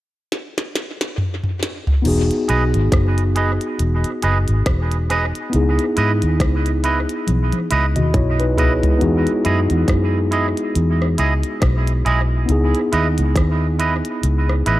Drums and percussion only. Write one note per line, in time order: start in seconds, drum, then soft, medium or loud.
0.32 snare medium
0.58 snare medium
0.75 snare medium
1.01 snare medium
1.18 mid tom medium
1.44 mid tom medium
1.63 snare medium
1.87 floor tom medium
2.05 crash medium
2.31 closed hi-hat medium
2.49 closed hi-hat medium
2.74 closed hi-hat medium
2.92 kick medium
2.92 cross-stick medium
2.92 closed hi-hat medium
3.18 closed hi-hat medium
3.36 closed hi-hat medium
3.61 closed hi-hat soft
3.79 closed hi-hat medium
4.04 closed hi-hat soft
4.22 closed hi-hat medium
4.48 closed hi-hat soft
4.66 kick loud
4.66 cross-stick loud
4.66 closed hi-hat medium
4.92 closed hi-hat medium
5.10 cross-stick medium
5.10 closed hi-hat medium
5.35 closed hi-hat soft
5.53 closed hi-hat medium
5.79 closed hi-hat soft
5.97 closed hi-hat medium
6.22 closed hi-hat medium
6.40 kick medium
6.40 cross-stick loud
6.40 closed hi-hat medium
6.66 closed hi-hat soft
6.84 closed hi-hat medium
7.09 closed hi-hat soft
7.27 closed hi-hat medium
7.27 high tom medium
7.52 closed hi-hat soft
7.52 high tom soft
7.71 closed hi-hat medium
7.96 closed hi-hat soft
7.96 mid tom medium
8.14 kick loud
8.14 closed hi-hat medium
8.14 mid tom medium
8.40 closed hi-hat medium
8.58 closed hi-hat medium
8.58 floor tom medium
8.83 closed hi-hat soft
8.83 floor tom medium
9.01 closed hi-hat medium
9.27 closed hi-hat soft
9.45 closed hi-hat medium
9.70 closed hi-hat medium
9.88 kick medium
9.88 cross-stick medium
9.88 closed hi-hat medium
10.32 closed hi-hat medium
10.57 closed hi-hat soft
10.76 closed hi-hat medium
11.02 cross-stick medium
11.18 closed hi-hat medium
11.43 closed hi-hat soft
11.62 kick loud
11.62 cross-stick loud
11.62 closed hi-hat medium
11.87 closed hi-hat medium
12.06 closed hi-hat medium
12.49 closed hi-hat medium
12.75 closed hi-hat soft
12.93 closed hi-hat medium
13.18 closed hi-hat medium
13.36 kick medium
13.36 cross-stick medium
13.36 closed hi-hat medium
13.80 closed hi-hat medium
14.05 closed hi-hat soft
14.23 closed hi-hat medium
14.49 cross-stick medium
14.66 closed hi-hat medium